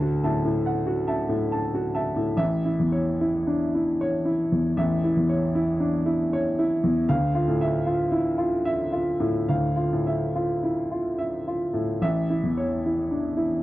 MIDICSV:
0, 0, Header, 1, 2, 480
1, 0, Start_track
1, 0, Key_signature, 3, "major"
1, 0, Tempo, 862069
1, 1334, Tempo, 815217
1, 1335, Time_signature, 3, 2, 24, 8
1, 1814, Tempo, 778210
1, 5174, Tempo, 839161
1, 7094, Tempo, 809717
1, 8051, End_track
2, 0, Start_track
2, 0, Title_t, "Grand piano"
2, 0, Program_c, 0, 0
2, 0, Note_on_c, 0, 38, 64
2, 0, Note_on_c, 0, 81, 57
2, 10, Note_on_c, 0, 66, 47
2, 16, Control_c, 0, 64, 127
2, 81, Note_off_c, 0, 81, 0
2, 131, Note_on_c, 0, 76, 43
2, 134, Note_on_c, 0, 45, 42
2, 134, Note_on_c, 0, 81, 48
2, 206, Note_off_c, 0, 66, 0
2, 242, Note_off_c, 0, 45, 0
2, 242, Note_off_c, 0, 76, 0
2, 243, Note_off_c, 0, 81, 0
2, 250, Note_on_c, 0, 45, 45
2, 368, Note_on_c, 0, 78, 52
2, 444, Note_off_c, 0, 45, 0
2, 483, Note_on_c, 0, 66, 50
2, 562, Note_off_c, 0, 78, 0
2, 598, Note_on_c, 0, 76, 47
2, 600, Note_on_c, 0, 81, 51
2, 678, Note_off_c, 0, 66, 0
2, 711, Note_off_c, 0, 76, 0
2, 712, Note_off_c, 0, 81, 0
2, 717, Note_on_c, 0, 45, 53
2, 847, Note_on_c, 0, 81, 50
2, 915, Note_off_c, 0, 45, 0
2, 971, Note_on_c, 0, 66, 47
2, 1043, Note_off_c, 0, 81, 0
2, 1084, Note_on_c, 0, 76, 49
2, 1084, Note_on_c, 0, 81, 50
2, 1169, Note_off_c, 0, 66, 0
2, 1199, Note_off_c, 0, 76, 0
2, 1199, Note_off_c, 0, 81, 0
2, 1203, Note_on_c, 0, 45, 44
2, 1306, Note_off_c, 0, 38, 0
2, 1319, Note_on_c, 0, 33, 55
2, 1321, Note_on_c, 0, 76, 70
2, 1328, Note_off_c, 0, 45, 0
2, 1347, Control_c, 0, 64, 0
2, 1448, Control_c, 0, 64, 127
2, 1485, Note_on_c, 0, 64, 48
2, 1570, Note_on_c, 0, 40, 43
2, 1586, Note_off_c, 0, 76, 0
2, 1644, Note_on_c, 0, 73, 49
2, 1746, Note_off_c, 0, 64, 0
2, 1813, Note_on_c, 0, 64, 48
2, 1906, Note_off_c, 0, 73, 0
2, 1958, Note_off_c, 0, 40, 0
2, 1974, Note_on_c, 0, 62, 45
2, 2075, Note_off_c, 0, 64, 0
2, 2139, Note_off_c, 0, 62, 0
2, 2143, Note_on_c, 0, 64, 45
2, 2307, Note_on_c, 0, 73, 58
2, 2404, Note_off_c, 0, 64, 0
2, 2458, Note_on_c, 0, 64, 47
2, 2567, Note_off_c, 0, 73, 0
2, 2623, Note_on_c, 0, 40, 48
2, 2722, Note_off_c, 0, 64, 0
2, 2757, Note_off_c, 0, 33, 0
2, 2776, Note_on_c, 0, 33, 62
2, 2777, Note_on_c, 0, 76, 55
2, 2801, Control_c, 0, 64, 0
2, 2882, Note_off_c, 0, 40, 0
2, 2901, Control_c, 0, 64, 127
2, 2942, Note_on_c, 0, 64, 49
2, 3021, Note_on_c, 0, 40, 49
2, 3037, Note_off_c, 0, 76, 0
2, 3098, Note_on_c, 0, 73, 51
2, 3199, Note_off_c, 0, 64, 0
2, 3258, Note_on_c, 0, 64, 57
2, 3357, Note_off_c, 0, 73, 0
2, 3406, Note_off_c, 0, 40, 0
2, 3412, Note_on_c, 0, 62, 48
2, 3518, Note_off_c, 0, 64, 0
2, 3571, Note_on_c, 0, 64, 53
2, 3579, Note_off_c, 0, 62, 0
2, 3739, Note_on_c, 0, 73, 62
2, 3833, Note_off_c, 0, 64, 0
2, 3898, Note_on_c, 0, 64, 56
2, 3995, Note_off_c, 0, 73, 0
2, 4051, Note_on_c, 0, 40, 62
2, 4153, Note_off_c, 0, 64, 0
2, 4187, Note_off_c, 0, 33, 0
2, 4206, Note_on_c, 0, 77, 77
2, 4207, Note_on_c, 0, 38, 68
2, 4214, Note_off_c, 0, 40, 0
2, 4228, Control_c, 0, 64, 0
2, 4318, Control_c, 0, 64, 127
2, 4366, Note_on_c, 0, 65, 56
2, 4445, Note_on_c, 0, 45, 48
2, 4464, Note_off_c, 0, 77, 0
2, 4528, Note_on_c, 0, 76, 58
2, 4623, Note_off_c, 0, 65, 0
2, 4685, Note_on_c, 0, 65, 56
2, 4784, Note_off_c, 0, 76, 0
2, 4830, Note_off_c, 0, 45, 0
2, 4840, Note_on_c, 0, 64, 52
2, 4944, Note_off_c, 0, 65, 0
2, 5003, Note_on_c, 0, 65, 56
2, 5007, Note_off_c, 0, 64, 0
2, 5171, Note_on_c, 0, 76, 64
2, 5265, Note_off_c, 0, 65, 0
2, 5326, Note_on_c, 0, 65, 49
2, 5424, Note_off_c, 0, 76, 0
2, 5484, Note_on_c, 0, 45, 52
2, 5584, Note_off_c, 0, 65, 0
2, 5624, Note_off_c, 0, 38, 0
2, 5647, Note_on_c, 0, 77, 56
2, 5649, Note_on_c, 0, 38, 54
2, 5662, Control_c, 0, 64, 0
2, 5746, Note_off_c, 0, 45, 0
2, 5783, Control_c, 0, 64, 127
2, 5805, Note_on_c, 0, 65, 43
2, 5900, Note_on_c, 0, 45, 43
2, 5910, Note_off_c, 0, 77, 0
2, 5980, Note_on_c, 0, 76, 40
2, 6070, Note_off_c, 0, 65, 0
2, 6145, Note_on_c, 0, 65, 45
2, 6236, Note_off_c, 0, 76, 0
2, 6284, Note_off_c, 0, 45, 0
2, 6304, Note_on_c, 0, 64, 42
2, 6396, Note_off_c, 0, 65, 0
2, 6458, Note_off_c, 0, 64, 0
2, 6463, Note_on_c, 0, 65, 40
2, 6619, Note_on_c, 0, 76, 46
2, 6713, Note_off_c, 0, 65, 0
2, 6786, Note_on_c, 0, 65, 42
2, 6874, Note_off_c, 0, 76, 0
2, 6934, Note_on_c, 0, 45, 40
2, 7038, Note_off_c, 0, 65, 0
2, 7071, Note_off_c, 0, 38, 0
2, 7095, Note_off_c, 0, 45, 0
2, 7095, Note_on_c, 0, 33, 57
2, 7097, Note_on_c, 0, 76, 67
2, 7106, Control_c, 0, 64, 0
2, 7222, Control_c, 0, 64, 127
2, 7264, Note_on_c, 0, 64, 46
2, 7343, Note_on_c, 0, 40, 42
2, 7356, Note_off_c, 0, 76, 0
2, 7425, Note_on_c, 0, 73, 46
2, 7519, Note_off_c, 0, 64, 0
2, 7594, Note_on_c, 0, 64, 40
2, 7680, Note_off_c, 0, 73, 0
2, 7726, Note_off_c, 0, 40, 0
2, 7743, Note_on_c, 0, 62, 36
2, 7842, Note_off_c, 0, 64, 0
2, 7897, Note_on_c, 0, 64, 45
2, 7900, Note_off_c, 0, 62, 0
2, 8051, Note_off_c, 0, 33, 0
2, 8051, Note_off_c, 0, 64, 0
2, 8051, End_track
0, 0, End_of_file